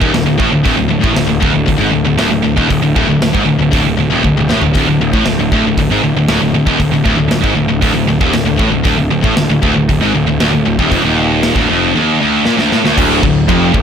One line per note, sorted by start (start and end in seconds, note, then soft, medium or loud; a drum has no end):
0.01 0.13 D#1 medium
0.01 0.14 D#2 medium
0.01 kick medium
0.14 0.26 D1 medium
0.14 0.26 D2 medium
0.14 snare loud
0.14 open hi-hat soft
0.26 0.39 D1 medium
0.26 0.38 D2 medium
0.39 0.52 A1 medium
0.39 0.51 A2 loud
0.39 kick medium
0.52 0.65 D1 medium
0.52 0.63 D2 medium
0.64 0.77 D1 medium
0.64 0.76 D2 loud
0.64 kick medium
0.64 open hi-hat soft
0.77 0.90 D1 medium
0.77 0.87 D2 medium
0.89 1.03 D1 medium
0.89 1.00 D2 medium
1.01 1.16 A1 medium
1.01 1.14 A2 loud
1.01 kick loud
1.14 1.29 D1 medium
1.14 1.26 D2 medium
1.14 snare loud
1.14 open hi-hat medium
1.27 1.42 D1 medium
1.27 1.39 D2 medium
1.40 1.54 D1 loud
1.40 1.51 D2 loud
1.40 kick loud
1.52 1.67 D1 medium
1.52 1.64 D2 medium
1.66 1.80 D1 medium
1.66 1.77 D2 medium
1.66 kick medium
1.66 open hi-hat medium
1.78 1.93 G#1 medium
1.78 1.91 G#2 medium
1.92 2.05 D1 medium
1.92 2.04 D2 medium
2.05 2.18 D1 medium
2.05 2.17 D2 medium
2.18 2.31 D1 medium
2.18 2.30 D2 loud
2.18 snare loud
2.18 open hi-hat medium
2.31 2.43 D1 medium
2.31 2.43 D2 medium
2.44 2.56 D1 medium
2.44 2.56 D2 medium
2.57 2.70 D#1 medium
2.57 2.69 D#2 medium
2.57 kick loud
2.70 2.82 D1 medium
2.70 2.82 D2 medium
2.70 kick medium
2.70 open hi-hat medium
2.82 2.95 D1 medium
2.82 2.95 D2 medium
2.96 3.07 D1 loud
2.96 3.08 D2 medium
2.96 kick loud
3.08 3.19 D1 medium
3.08 3.21 D2 medium
3.19 3.32 D1 medium
3.19 3.33 D2 medium
3.19 snare loud
3.19 open hi-hat medium
3.33 3.45 G#1 medium
3.33 3.45 G#2 loud
3.33 kick loud
3.45 3.58 D1 medium
3.45 3.58 D2 medium
3.59 3.71 D1 medium
3.59 3.70 D2 medium
3.71 3.84 D1 medium
3.71 3.82 D2 medium
3.71 kick loud
3.71 open hi-hat medium
3.83 3.96 D1 medium
3.83 3.96 D2 medium
3.88 3.99 D2 medium
3.97 4.09 D1 medium
3.97 4.10 D2 medium
4.10 4.22 D#1 medium
4.10 4.22 D#2 medium
4.23 4.35 D1 medium
4.23 4.36 D2 medium
4.23 kick medium
4.36 4.48 D1 medium
4.36 4.49 D2 medium
4.36 mid tom medium
4.49 4.61 A1 medium
4.49 4.61 A2 loud
4.49 snare medium
4.62 4.74 D1 medium
4.62 4.72 D2 medium
4.62 floor tom medium
4.74 4.86 D1 medium
4.74 4.86 D2 medium
4.74 kick medium
4.74 open hi-hat medium
4.87 4.99 D1 medium
4.87 5.00 D2 medium
5.00 5.13 D1 medium
5.00 5.13 D2 medium
5.13 5.25 A1 medium
5.13 5.25 A2 loud
5.13 kick loud
5.25 5.38 D1 medium
5.25 5.38 D2 medium
5.25 snare medium
5.25 open hi-hat soft
5.39 5.51 D1 medium
5.39 5.51 D2 medium
5.52 5.64 D1 medium
5.52 5.64 D2 medium
5.52 kick medium
5.65 5.76 D1 medium
5.65 5.78 D2 medium
5.77 5.89 D1 medium
5.77 5.91 D2 medium
5.77 kick medium
5.77 open hi-hat medium
5.90 6.02 G#1 medium
5.90 6.03 G#2 medium
6.03 6.14 D1 medium
6.03 6.16 D2 medium
6.15 6.27 D1 medium
6.15 6.28 D2 medium
6.28 6.40 D1 medium
6.28 6.41 D2 loud
6.28 snare loud
6.28 open hi-hat soft
6.41 6.53 D1 medium
6.41 6.53 D2 medium
6.53 6.66 D1 medium
6.53 6.66 D2 medium
6.66 6.79 D#1 medium
6.66 6.79 D#2 medium
6.66 kick loud
6.80 6.91 D1 medium
6.80 6.92 D2 medium
6.80 kick medium
6.80 open hi-hat medium
6.92 7.04 D1 medium
6.92 7.04 D2 medium
7.05 7.17 D1 medium
7.05 7.18 D2 medium
7.05 kick medium
7.18 7.30 D1 medium
7.18 7.31 D2 medium
7.28 7.43 D1 medium
7.28 7.40 D2 medium
7.28 snare loud
7.28 open hi-hat medium
7.32 7.43 D2 medium
7.43 7.56 G#1 medium
7.43 7.56 G#2 loud
7.43 kick loud
7.56 7.69 D1 medium
7.56 7.67 D2 medium
7.69 7.82 D1 medium
7.69 7.81 D2 medium
7.82 7.95 D1 medium
7.82 7.94 D2 loud
7.82 kick loud
7.82 open hi-hat medium
7.95 8.07 D1 medium
7.95 8.07 D2 medium
8.08 8.20 D1 medium
8.08 8.20 D2 medium
8.20 8.33 D#1 medium
8.20 8.33 D#2 medium
8.20 kick loud
8.33 8.46 D1 medium
8.33 8.44 D2 medium
8.33 snare loud
8.33 open hi-hat medium
8.46 8.59 D1 medium
8.46 8.57 D2 medium
8.57 8.72 A1 medium
8.57 8.71 A2 loud
8.57 kick medium
8.71 8.85 D1 medium
8.71 8.82 D2 medium
8.83 8.97 D1 medium
8.83 8.96 D2 loud
8.83 kick loud
8.83 open hi-hat medium
8.97 9.11 D1 medium
8.97 9.09 D2 medium
9.11 9.23 D1 medium
9.11 9.22 D2 medium
9.22 9.36 A1 medium
9.22 9.35 A2 loud
9.22 kick loud
9.36 9.49 D1 medium
9.36 9.48 D2 medium
9.36 snare loud
9.36 open hi-hat medium
9.50 9.62 D1 medium
9.50 9.61 D2 medium
9.62 9.75 D1 loud
9.62 9.74 D2 medium
9.62 kick loud
9.75 9.88 D1 medium
9.75 9.88 D2 medium
9.89 10.01 D1 medium
9.89 10.02 D2 medium
9.89 kick medium
9.89 open hi-hat soft
10.02 10.14 G#1 medium
10.02 10.14 G#2 medium
10.15 10.27 D1 medium
10.15 10.26 D2 medium
10.27 10.39 D1 medium
10.27 10.39 D2 medium
10.40 10.52 D1 medium
10.40 10.52 D2 loud
10.40 snare loud
10.40 open hi-hat soft
10.53 10.65 D1 medium
10.53 10.64 D2 medium
10.65 10.78 D1 medium
10.65 10.79 D2 medium
10.79 10.91 D#1 medium
10.79 10.91 D#2 loud
10.79 kick medium
10.91 11.02 F1 medium
10.91 11.03 F2 loud
10.91 kick medium
10.91 open hi-hat soft
11.03 11.52 D#1 medium
11.03 11.55 D#2 medium
11.43 snare loud
11.43 open hi-hat medium
11.55 11.68 D1 medium
11.55 11.69 D2 loud
11.55 kick medium
11.69 11.93 F1 medium
11.69 11.94 F2 medium
11.95 12.20 D#2 medium
12.21 12.45 D2 medium
12.45 12.57 A#2 loud
12.45 snare medium
12.57 12.70 D2 medium
12.57 snare medium
12.72 12.84 A2 loud
12.72 snare medium
12.85 12.95 D2 medium
12.85 snare medium
12.97 13.22 D1 loud
12.97 13.22 D2 loud
12.97 kick loud
12.97 crash loud
12.97 crash medium
13.23 13.47 D1 medium
13.23 13.44 D2 medium
13.23 kick loud
13.49 13.73 F1 medium
13.49 13.73 F2 loud
13.49 kick loud
13.49 crash medium
13.74 13.82 D1 medium
13.74 13.82 D2 medium
13.74 kick medium